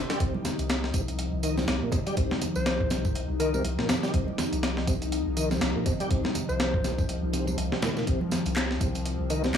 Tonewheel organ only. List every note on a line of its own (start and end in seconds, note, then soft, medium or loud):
0.10 0.19 G3 medium
0.20 0.34 C3 medium
0.94 1.01 C3 loud
1.43 1.56 D#3 medium
1.57 1.66 C3 loud
1.82 1.91 A#2 loud
1.92 2.00 C3 loud
2.07 2.16 G3 medium
2.17 2.31 C3 medium
2.91 2.98 C3 loud
3.40 3.53 D#3 medium
3.54 3.63 C3 loud
3.79 3.88 A#2 loud
3.89 3.96 C3 loud
4.03 4.12 G3 medium
4.13 4.27 C3 medium
4.87 4.95 C3 loud
5.37 5.50 D#3 medium
5.51 5.60 C3 loud
5.76 5.85 A#2 loud
5.86 5.93 C3 loud
6.00 6.09 G3 medium
6.11 6.24 C3 medium
6.84 6.92 C3 loud
7.33 7.46 C3 medium
7.47 7.57 C3 loud
7.72 7.81 C3 medium
7.82 7.90 A#2 medium
7.97 8.06 A#2 medium
8.07 8.21 C3 medium
8.81 8.88 C3 medium
9.30 9.43 D#3 medium
9.44 9.53 C3 loud